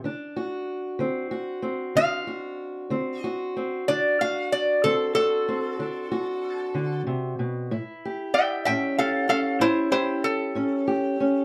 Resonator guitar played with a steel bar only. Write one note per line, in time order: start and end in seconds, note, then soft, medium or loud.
1.97 3.21 F5 loud
3.21 3.83 D#5 loud
3.88 4.18 D5 medium
4.21 4.51 F5 medium
4.52 4.82 D5 medium
4.84 5.14 A4 medium
5.15 7.02 A4 loud
8.34 8.64 E5 medium
8.34 8.64 G5 medium
8.65 8.95 E5 medium
8.65 8.96 G5 medium
8.98 9.27 A4 medium
8.98 9.28 F5 medium
9.29 9.58 A4 medium
9.29 9.60 F5 medium
9.61 9.90 E4 medium
9.61 9.91 C5 medium
9.92 10.21 E4 medium
9.92 10.23 C5 medium
10.24 11.45 A4 medium